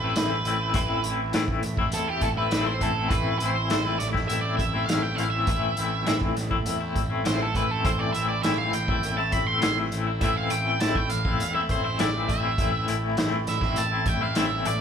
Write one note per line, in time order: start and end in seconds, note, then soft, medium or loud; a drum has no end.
0.00 0.14 A1 medium
0.00 0.16 A2 medium
0.00 0.39 A2 medium
0.00 1.01 E3 medium
0.00 1.62 A3 medium
0.00 0.17 A3 medium
0.00 0.18 C4 medium
0.00 0.18 E4 medium
0.00 1.02 B4 medium
0.16 0.44 A1 medium
0.16 0.73 A2 medium
0.16 0.45 E3 medium
0.16 0.33 A3 loud
0.16 0.33 C4 medium
0.16 0.31 E4 medium
0.16 snare loud
0.16 closed hi-hat medium
0.31 0.46 A3 medium
0.31 0.47 C4 medium
0.31 0.47 E4 medium
0.40 2.86 A2 medium
0.45 0.73 A1 medium
0.45 0.74 E3 medium
0.45 0.62 A3 medium
0.45 0.61 C4 medium
0.45 0.60 E4 medium
0.45 closed hi-hat medium
0.61 0.74 A3 medium
0.61 0.75 C4 medium
0.61 0.76 E4 medium
0.74 1.02 A1 medium
0.74 1.33 A2 medium
0.74 1.03 E3 medium
0.74 1.04 A3 medium
0.74 1.05 C4 loud
0.74 1.05 E4 loud
0.74 kick loud
0.74 closed hi-hat medium
1.01 1.33 A1 medium
1.01 3.48 E3 medium
1.01 1.34 E3 medium
1.01 1.35 A3 medium
1.01 closed hi-hat medium
1.05 1.35 C4 medium
1.05 1.35 E4 medium
1.33 1.62 A1 medium
1.33 2.51 A2 medium
1.33 1.64 E3 medium
1.33 1.50 A3 loud
1.33 1.49 C4 loud
1.33 1.48 E4 medium
1.33 snare loud
1.33 closed hi-hat medium
1.48 1.64 A3 medium
1.48 1.64 C4 medium
1.48 1.64 E4 medium
1.48 kick medium
1.62 1.92 A1 medium
1.62 2.26 A3 medium
1.62 muted clean electric guitar stroke soft
1.62 closed hi-hat medium
1.77 2.09 A3 soft
1.77 2.08 C4 soft
1.77 2.07 E4 medium
1.77 kick medium
1.92 2.21 E2 medium
1.92 2.09 A4 medium
1.92 closed hi-hat medium
2.08 2.38 A3 medium
2.08 2.38 C4 medium
2.08 2.36 E4 medium
2.08 2.23 G4 medium
2.21 2.50 A1 medium
2.21 2.27 A4 medium
2.21 kick medium
2.21 closed hi-hat medium
2.26 4.10 A3 medium
2.36 2.52 A3 medium
2.36 2.53 C4 medium
2.36 2.53 E4 medium
2.36 2.66 B4 medium
2.51 2.80 A1 medium
2.51 2.80 E3 medium
2.51 2.68 A3 medium
2.51 2.67 C4 medium
2.51 2.66 E4 loud
2.51 snare loud
2.51 closed hi-hat medium
2.66 2.81 A3 medium
2.66 2.82 C4 medium
2.66 2.83 E4 medium
2.66 2.82 C5 medium
2.81 3.09 A1 medium
2.81 3.10 E3 medium
2.81 2.97 A3 medium
2.81 2.97 C4 medium
2.81 2.95 E4 medium
2.81 3.09 A4 medium
2.81 kick medium
2.81 closed hi-hat medium
2.86 5.36 A2 medium
2.96 3.11 A3 medium
2.96 3.11 C4 medium
2.96 3.12 E4 medium
3.10 3.39 A1 medium
3.10 3.69 A2 medium
3.10 3.40 E3 medium
3.10 3.40 A3 medium
3.10 3.41 C4 medium
3.10 3.42 E4 medium
3.10 3.39 B4 medium
3.10 kick loud
3.10 closed hi-hat medium
3.39 3.68 A1 medium
3.39 3.70 E3 medium
3.39 3.70 A3 medium
3.39 3.71 C4 medium
3.39 3.71 E4 medium
3.39 3.84 C5 medium
3.39 closed hi-hat medium
3.49 6.00 E3 medium
3.70 3.98 A1 medium
3.70 4.87 A2 medium
3.70 3.98 E3 medium
3.70 3.86 A3 medium
3.70 3.85 C4 medium
3.70 3.84 E4 loud
3.70 snare loud
3.70 closed hi-hat medium
3.84 3.99 A3 medium
3.84 3.99 C4 medium
3.84 3.99 E4 medium
3.84 4.01 B4 medium
3.99 4.28 A1 medium
3.99 4.07 D5 medium
3.99 muted clean electric guitar stroke soft
3.99 snare soft
3.99 closed hi-hat medium
4.10 4.74 A3 medium
4.10 4.42 E4 medium
4.14 4.45 A3 soft
4.14 4.44 C4 medium
4.14 kick medium
4.14 snare soft
4.28 4.57 A1 medium
4.28 4.41 E5 loud
4.28 closed hi-hat medium
4.41 4.75 A3 medium
4.41 4.74 C4 medium
4.41 4.73 E4 medium
4.41 4.57 D5 medium
4.57 4.87 A1 medium
4.57 4.85 E5 medium
4.57 kick medium
4.57 closed hi-hat medium
4.73 6.62 A3 medium
4.73 4.89 A3 medium
4.73 4.89 C4 medium
4.73 4.90 E4 medium
4.86 5.16 A1 medium
4.86 5.47 A2 medium
4.86 5.17 E3 medium
4.86 5.05 A3 medium
4.86 5.04 C4 medium
4.86 5.01 F5 medium
4.86 snare loud
4.86 closed hi-hat medium
4.90 5.03 E4 loud
5.03 5.18 A3 soft
5.03 5.19 C4 medium
5.03 5.20 E4 medium
5.03 5.17 G5 medium
5.16 5.46 A1 medium
5.16 5.48 E3 medium
5.16 5.35 A3 medium
5.16 5.34 C4 medium
5.16 5.32 E4 medium
5.16 5.30 F5 loud
5.16 closed hi-hat medium
5.30 5.49 E4 medium
5.30 6.16 E5 medium
5.34 7.87 A2 medium
5.34 5.48 A3 medium
5.34 5.48 C4 medium
5.47 5.75 A1 medium
5.47 6.05 A2 medium
5.47 5.76 E3 medium
5.47 5.77 A3 medium
5.47 5.78 C4 medium
5.47 5.78 E4 medium
5.47 kick loud
5.47 closed hi-hat medium
5.77 6.05 A1 medium
5.77 6.06 E3 medium
5.77 6.06 A3 medium
5.77 6.07 C4 medium
5.77 6.07 E4 medium
5.77 closed hi-hat medium
6.01 8.50 E3 medium
6.06 6.34 A1 medium
6.06 7.24 A2 medium
6.06 6.36 E3 medium
6.06 6.23 A3 medium
6.06 6.22 C4 medium
6.06 6.21 E4 medium
6.06 snare loud
6.06 closed hi-hat medium
6.21 6.36 A3 medium
6.21 6.37 C4 medium
6.21 6.37 E4 medium
6.21 kick medium
6.36 6.64 A1 medium
6.36 muted clean electric guitar stroke soft
6.36 snare soft
6.36 closed hi-hat medium
6.51 6.82 A3 soft
6.51 6.81 C4 medium
6.51 6.80 E4 medium
6.51 kick medium
6.62 6.94 E2 medium
6.62 7.23 A3 medium
6.62 closed hi-hat medium
6.81 7.11 A3 soft
6.81 7.10 C4 medium
6.81 7.09 E4 medium
6.96 7.24 A1 medium
6.96 kick medium
6.96 closed hi-hat medium
7.10 7.25 A3 soft
7.10 7.26 C4 medium
7.10 7.26 E4 medium
7.23 7.53 A1 medium
7.23 7.84 A2 medium
7.23 7.54 E3 medium
7.23 9.12 A3 medium
7.23 7.41 A3 medium
7.23 7.41 C4 medium
7.23 7.39 E4 medium
7.23 7.41 C5 medium
7.23 snare loud
7.23 closed hi-hat medium
7.40 7.55 A3 soft
7.40 7.56 C4 medium
7.40 7.56 E4 medium
7.40 7.56 A4 medium
7.55 7.83 A1 medium
7.55 7.85 E3 medium
7.55 7.71 A3 medium
7.55 7.70 C4 medium
7.55 7.69 E4 medium
7.55 7.71 B4 medium
7.55 kick medium
7.55 closed hi-hat medium
7.69 7.85 A3 medium
7.69 7.86 C4 medium
7.69 7.86 E4 medium
7.69 7.85 A4 medium
7.85 8.12 A1 medium
7.85 8.44 A2 medium
7.85 10.36 A2 medium
7.85 8.14 E3 medium
7.85 8.15 A3 medium
7.85 8.15 C4 medium
7.85 8.16 E4 medium
7.85 8.00 C5 medium
7.85 kick medium
7.85 closed hi-hat medium
7.99 8.12 D5 medium
8.13 8.42 A1 medium
8.13 8.44 E3 medium
8.13 8.45 A3 medium
8.13 8.45 C4 medium
8.13 8.46 E4 medium
8.13 8.28 E5 medium
8.13 closed hi-hat medium
8.29 8.43 D5 medium
8.43 8.71 A1 medium
8.43 9.61 A2 medium
8.43 8.74 E3 medium
8.43 8.60 A3 medium
8.43 8.60 C4 medium
8.43 8.58 E4 medium
8.43 8.58 E5 medium
8.43 snare loud
8.43 closed hi-hat medium
8.50 10.99 E3 medium
8.58 8.75 A3 medium
8.58 8.75 C4 medium
8.58 8.75 E4 medium
8.58 8.74 F5 medium
8.73 9.01 A1 medium
8.73 9.15 G5 medium
8.73 muted clean electric guitar stroke soft
8.73 closed hi-hat medium
8.88 9.20 A3 medium
8.88 9.19 C4 medium
8.88 9.18 E4 medium
8.88 kick medium
9.03 9.31 A1 medium
9.03 closed hi-hat medium
9.12 9.74 A3 medium
9.17 9.49 A3 medium
9.17 9.48 C4 medium
9.17 9.46 E4 medium
9.17 9.32 A5 loud
9.32 9.60 A1 medium
9.32 9.47 B5 loud
9.32 kick medium
9.32 closed hi-hat medium
9.47 9.62 A3 medium
9.47 9.62 C4 medium
9.47 9.63 E4 medium
9.47 9.77 C6 medium
9.61 9.90 A1 medium
9.61 10.22 A2 medium
9.61 9.91 E3 loud
9.61 9.79 A3 loud
9.61 9.78 C4 loud
9.61 9.77 E4 loud
9.61 snare loud
9.61 closed hi-hat medium
9.74 11.62 A3 medium
9.74 9.93 E4 medium
9.79 9.92 A3 medium
9.79 9.93 C4 medium
9.92 10.20 A1 medium
9.92 10.22 E3 medium
9.92 10.09 A3 medium
9.92 10.08 C4 medium
9.92 10.07 E4 medium
9.92 closed hi-hat medium
10.07 10.23 A3 medium
10.07 10.24 C4 medium
10.07 10.24 E4 medium
10.21 10.49 A1 medium
10.21 10.81 A2 medium
10.21 10.50 E3 medium
10.21 10.51 A3 medium
10.21 10.52 C4 loud
10.21 10.52 E4 medium
10.21 10.36 E5 medium
10.21 kick loud
10.21 closed hi-hat medium
10.36 12.85 A2 medium
10.36 10.50 F5 medium
10.50 10.79 A1 medium
10.50 10.81 E3 medium
10.50 10.82 A3 medium
10.50 10.83 C4 medium
10.50 10.83 E4 medium
10.50 10.80 G5 medium
10.50 closed hi-hat medium
10.80 11.09 A1 medium
10.80 11.99 A2 medium
10.80 11.10 E3 medium
10.80 10.98 A3 loud
10.80 10.96 C4 medium
10.80 10.95 E4 loud
10.80 10.96 A5 medium
10.80 snare loud
10.80 closed hi-hat medium
10.95 11.11 A3 medium
10.95 11.12 E4 medium
10.95 11.09 G5 medium
10.95 kick medium
11.00 13.47 E3 medium
11.09 11.38 A1 medium
11.09 11.54 F5 loud
11.09 muted clean electric guitar stroke soft
11.09 closed hi-hat medium
11.25 11.56 A3 medium
11.25 11.55 C4 medium
11.25 11.54 E4 medium
11.25 kick medium
11.40 11.68 E2 medium
11.40 closed hi-hat medium
11.54 11.86 A3 medium
11.54 11.85 C4 medium
11.54 11.84 E4 medium
11.54 11.60 E5 medium
11.62 12.25 A3 medium
11.69 11.97 A1 medium
11.69 11.98 C5 medium
11.69 kick medium
11.69 closed hi-hat medium
11.84 12.00 A3 soft
11.84 12.00 C4 medium
11.84 12.01 E4 medium
11.99 12.27 A1 medium
11.99 12.57 A2 medium
11.99 12.28 E3 medium
11.99 12.14 A3 loud
11.99 12.14 C4 loud
11.99 12.13 E4 loud
11.99 12.30 D5 medium
11.99 snare loud
11.99 closed hi-hat medium
12.13 12.29 A3 medium
12.13 12.30 C4 medium
12.13 12.30 E4 medium
12.25 12.56 A1 medium
12.25 12.58 E3 medium
12.25 14.10 A3 medium
12.25 kick medium
12.29 12.45 A3 medium
12.29 12.44 C4 medium
12.29 12.43 E4 medium
12.29 12.85 E5 medium
12.29 closed hi-hat medium
12.43 12.58 A3 medium
12.43 12.59 C4 medium
12.43 12.60 E4 medium
12.58 12.86 A1 medium
12.58 13.17 A2 medium
12.58 12.87 E3 medium
12.58 12.87 A3 medium
12.58 12.88 C4 medium
12.58 12.88 E4 medium
12.58 kick loud
12.58 closed hi-hat medium
12.86 13.16 A1 medium
12.86 14.81 A2 medium
12.86 13.17 E3 medium
12.86 13.18 A3 medium
12.86 13.18 C4 medium
12.86 13.19 E4 medium
12.86 closed hi-hat medium
13.17 13.46 A1 medium
13.17 13.47 E3 medium
13.17 13.33 A3 medium
13.17 13.33 C4 medium
13.17 13.31 E4 medium
13.17 snare loud
13.17 closed hi-hat medium
13.31 13.47 A3 medium
13.31 13.47 C4 medium
13.31 13.47 E4 medium
13.47 13.75 A1 medium
13.47 14.81 E3 medium
13.47 13.78 E5 medium
13.47 muted clean electric guitar stroke soft
13.47 snare soft
13.47 closed hi-hat medium
13.61 13.93 A3 medium
13.61 13.92 C4 medium
13.61 13.91 E4 medium
13.61 kick medium
13.61 snare soft
13.76 14.05 A1 medium
13.76 14.08 A5 loud
13.76 closed hi-hat medium
13.91 14.23 A3 medium
13.91 14.22 C4 medium
13.91 14.20 E4 medium
14.06 14.34 A1 medium
14.06 14.22 G5 medium
14.06 kick medium
14.06 closed hi-hat medium
14.10 14.74 A3 medium
14.21 14.36 A3 medium
14.21 14.36 C4 medium
14.21 14.37 E4 medium
14.21 14.37 F5 medium
14.35 14.64 A1 medium
14.35 14.81 A2 medium
14.35 14.65 E3 medium
14.35 14.52 A3 medium
14.35 14.51 C4 loud
14.35 14.50 E4 loud
14.35 14.67 E5 medium
14.35 snare medium
14.35 closed hi-hat medium
14.50 14.66 A3 medium
14.50 14.66 C4 medium
14.50 14.67 E4 medium
14.65 14.81 A1 medium
14.65 14.81 E3 medium
14.65 14.81 A3 medium
14.65 14.81 C4 medium
14.65 14.80 E4 medium
14.65 14.80 D5 medium
14.65 closed hi-hat medium
14.74 14.81 A3 medium